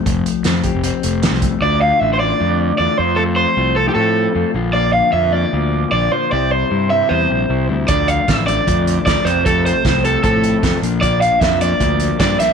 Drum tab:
HH |x-x-x-x-x-x-x-x-|----------------|----------------|----------------|
SD |----o-------oo--|----------------|----------------|----------------|
BD |o-----o-------o-|----------------|----------------|----------------|

HH |----------------|x-x-x-x-x-x-x-x-|x-x-x-x-x-x-x-x-|x-x-x-x-x-x-x-x-|
SD |----------------|----o-------o---|----o-------o---|----o-------o-o-|
BD |----------------|o---o---o---o---|o---o---o---o---|o---o---o---o---|